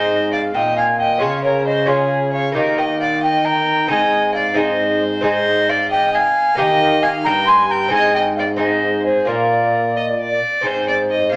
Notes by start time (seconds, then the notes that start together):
Already playing: G#2 C4 D#4 G#4 C5 D#5
0.32 D5 F5
0.54 A#2 D#5 G5
0.77 F5 G#5
0.99 D#5 G5
1.18 C#3 C#4 F4 G#4 C#5 F5
1.22 C#3
1.44 A#4 C#5
1.66 C5 D#5
1.85 C#4 F4 G#4 C#5
1.90 G#4
2.33 C#5 F5
2.52 A#3 D#4 G4 A#4
2.56 D#3 D#5
2.78 D#5 G5
3.00 D5 F5
3.23 D#5 G5
3.45 G5 A#5
3.87 C4 D#4 G#4 G#5
3.91 G#2 D#5
4.34 D5 F5
4.54 C4 D#4 G#4 D#5
4.59 C5
5.21 C4 D#4 G#4 D#5
5.26 C5
5.69 D5 F5
5.91 D#5 G5
6.14 F5 G#5
6.55 D#3 A#3 D#4 G4 D#5 G5
7.02 F5 G#5
7.25 G2 G5 A#5
7.47 G#5 C6
7.69 G5 A#5
7.88 C4 D#4 G#4 G#5
7.92 G#2 D#5
8.14 D#5 G5
8.37 D5 F5
8.56 C4 D#4 G#4 C5 D#5
9.06 G#4 C5
9.25 A#2 A#3 F4 A#4 D5
9.96 D#5
10.20 D5
10.61 C4 D#4 G#4
10.65 G#2 C5
10.88 D5
11.11 D#5
11.32 C3 F5